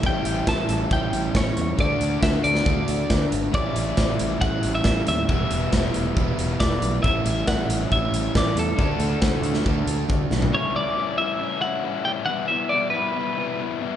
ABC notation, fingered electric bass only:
X:1
M:4/4
L:1/8
Q:1/4=137
K:Amix
V:1 name="Fingered electric bass" clef=bass
A,,, A,,, A,,, A,,, A,,, A,,, A,,, E,, | D,, D,, D,, D,, D,, D,, D,, ^G,,, | A,,, A,,, A,,, A,,, A,,, A,,, A,,, ^D,, | E,,, E,,, E,,, E,,, E,,, E,,, E,,, B,,, |
A,,, A,,, A,,, A,,, A,,, A,,, A,,, E,, | D,, D,, D,, D,, D,, D,, D,, B,,, | z8 | z8 |]